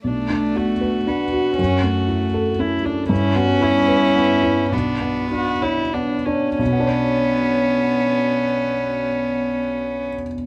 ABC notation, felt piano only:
X:1
M:3/4
L:1/8
Q:1/4=103
K:Bm
V:1 name="Felt piano"
B,,, D F B D F | F,, C E A C E | G,, B, E B B, E | B,,, B, D c B, D |
[B,,,B,,B,Dc]6- | [B,,,B,,B,Dc]6 |]